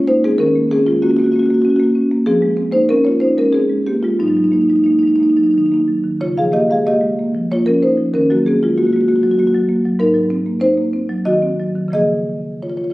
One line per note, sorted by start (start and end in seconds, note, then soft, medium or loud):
0.00 0.34 C#3 medium
0.00 0.16 C#4 soft
0.08 0.33 A#3 soft
0.08 0.22 D#4 medium
0.08 0.23 C5 medium
0.24 0.40 G#3 soft
0.24 0.39 C4 medium
0.24 0.40 G#4 medium
0.38 2.23 D#3 medium
0.38 0.69 C#4 medium
0.38 0.69 A#4 medium
0.56 0.81 A#3 soft
0.71 0.85 C4 medium
0.71 0.96 C#4 medium
0.71 0.87 G#4 medium
0.86 1.02 G#3 medium
0.86 1.02 C4 soft
0.86 1.02 F4 medium
1.02 1.11 A#3 medium
1.02 1.28 C#4 medium
1.02 1.10 F#4 medium
1.10 1.19 A#3 soft
1.10 1.17 F#4 medium
1.17 1.26 A#3 soft
1.17 1.35 C4 soft
1.17 1.24 F#4 medium
1.24 1.36 A#3 soft
1.24 1.32 F#4 medium
1.32 1.43 A#3 soft
1.32 1.59 C#4 soft
1.32 1.39 F#4 medium
1.39 1.49 A#3 soft
1.39 1.46 F#4 medium
1.46 1.54 F#4 medium
1.50 1.75 A#3 medium
1.54 1.62 F#4 medium
1.62 1.90 C#4 medium
1.62 1.70 F#4 medium
1.70 1.76 F#4 medium
1.76 2.05 A#3 medium
1.76 1.83 F#4 medium
1.83 1.93 F#4 medium
1.95 2.21 C#4 soft
2.12 2.27 A#3 medium
2.26 4.15 F3 medium
2.26 2.56 C4 medium
2.26 2.71 G#4 medium
2.42 2.67 G#3 medium
2.57 2.83 C4 medium
2.72 2.89 A#3 soft
2.72 2.88 D#4 medium
2.72 2.89 C5 medium
2.89 3.15 C4 medium
2.89 3.05 C#4 medium
2.89 3.05 A#4 medium
3.04 3.21 A#3 soft
3.04 3.21 F4 medium
3.04 3.21 C#5 medium
3.20 3.47 C4 soft
3.20 3.37 D#4 medium
3.20 3.37 C5 medium
3.38 3.64 G#3 soft
3.38 3.54 C#4 medium
3.38 3.54 A#4 medium
3.53 3.84 C4 medium
3.53 3.84 G#4 medium
3.69 3.96 G#3 soft
3.86 4.02 A#3 soft
3.86 4.13 C4 soft
3.86 4.03 G4 medium
4.03 4.19 G#3 soft
4.03 4.19 F4 medium
4.19 6.15 G#2 medium
4.19 4.30 F#3 soft
4.19 4.28 D#4 medium
4.28 4.36 F#3 soft
4.28 4.36 D#4 soft
4.36 4.63 F#3 soft
4.36 4.44 D#4 medium
4.44 4.53 D#4 medium
4.52 4.79 A#3 soft
4.52 4.62 D#4 medium
4.62 4.69 D#4 soft
4.69 4.86 G#3 soft
4.69 4.76 D#4 medium
4.76 4.84 D#4 soft
4.84 5.13 A#3 soft
4.84 4.91 D#4 medium
4.91 4.99 D#4 soft
4.99 5.07 D#4 medium
5.03 5.20 G#3 soft
5.07 5.16 D#4 soft
5.16 5.23 D#4 medium
5.20 5.47 A#3 soft
5.20 5.30 D#4 medium
5.30 5.37 D#4 medium
5.37 5.63 F#3 soft
5.37 5.43 D#4 soft
5.43 5.51 D#4 medium
5.51 5.80 D#3 soft
5.51 5.58 D#4 soft
5.58 5.66 D#4 medium
5.66 5.74 D#4 soft
5.72 5.98 A#3 soft
5.72 5.83 D#4 medium
5.88 6.14 F#3 soft
6.04 6.20 D#3 soft
6.21 8.10 C#3 medium
6.21 6.36 F4 medium
6.21 6.36 C#5 medium
6.37 6.63 F3 soft
6.37 6.53 G#4 medium
6.37 6.53 F5 medium
6.52 6.79 A#3 soft
6.52 6.68 G4 medium
6.52 6.69 D#5 medium
6.70 6.86 G#3 soft
6.70 6.86 G#4 soft
6.70 6.86 F5 medium
6.86 7.12 A#3 soft
6.86 7.47 G4 medium
6.86 7.48 D#5 medium
7.01 7.18 G#3 soft
7.19 7.44 A#3 soft
7.34 7.60 F3 soft
7.51 7.76 A#3 soft
7.51 7.66 F4 medium
7.51 7.67 C#5 medium
7.66 7.92 F3 soft
7.66 7.82 C#4 medium
7.66 7.82 A#4 medium
7.82 8.08 A#3 soft
7.82 8.12 D#4 soft
7.82 8.13 C5 medium
7.98 8.14 F3 soft
8.14 9.96 D#3 medium
8.14 8.29 C#4 medium
8.14 8.30 A#4 medium
8.30 8.56 F#3 soft
8.30 8.45 A#3 soft
8.30 8.46 F#4 medium
8.46 8.72 A#3 soft
8.46 8.62 C4 medium
8.46 8.62 G#4 medium
8.63 8.78 G#3 soft
8.63 8.78 F4 medium
8.78 8.87 A#3 soft
8.78 8.85 F#4 medium
8.85 8.96 A#3 soft
8.85 8.93 F#4 medium
8.93 9.09 G#3 soft
8.93 9.07 A#3 soft
8.93 9.01 F#4 medium
9.01 9.08 F#4 medium
9.08 9.33 A#3 soft
9.08 9.16 F#4 medium
9.16 9.23 F#4 medium
9.23 9.48 F#3 soft
9.23 9.31 F#4 medium
9.31 9.39 F#4 medium
9.39 9.64 A#3 soft
9.39 9.47 F#4 medium
9.47 9.56 F#4 medium
9.55 9.79 F#3 soft
9.55 9.66 F#4 medium
9.69 9.93 A#3 soft
9.85 10.00 F#3 soft
9.99 11.89 G#2 medium
9.99 10.58 D#4 medium
9.99 10.59 A#4 medium
10.14 10.39 F#3 soft
10.30 10.55 C4 medium
10.46 10.62 A#3 soft
10.60 10.86 C4 medium
10.60 11.22 D#4 medium
10.60 11.23 C5 medium
10.77 10.93 A#3 soft
10.93 11.19 C4 soft
11.09 11.36 F#3 medium
11.25 11.52 D#3 soft
11.25 11.89 F#4 medium
11.25 11.90 D#5 medium
11.42 11.69 C4 soft
11.59 11.86 F#3 soft
11.75 11.93 D#3 soft
11.88 12.94 C#3 soft
11.88 12.94 F3 soft
11.88 12.94 A#3 soft
11.93 12.58 G#4 medium
11.93 12.59 D#5 medium
12.62 12.70 F4 soft
12.62 12.70 C#5 soft
12.70 12.78 F4 soft
12.70 12.77 C#5 soft
12.77 12.84 F4 soft
12.77 12.84 C#5 soft
12.84 12.94 F4 soft
12.84 12.90 C#5 soft
12.90 12.94 C#5 soft